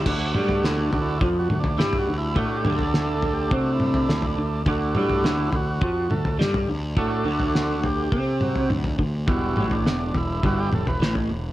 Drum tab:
CC |x---------------|----------------|----------------|----------------|
SD |----o-------o---|----o-------o---|----o-------o---|----o-----------|
T2 |--o-------o-----|--o-------o-----|--o-------o-----|----------o-o---|
FT |o--o--o-o--o-o--|o--o--o-o--o-o--|o--o--o-o--o-o--|o--o--o-o--o-o--|
BD |o-------o-------|o-------o-------|o-------o-------|o-------o-----o-|

CC |----------------|
SD |----o-------o---|
T2 |--o-------o-----|
FT |o--o--o-o--o-o--|
BD |o-------o-------|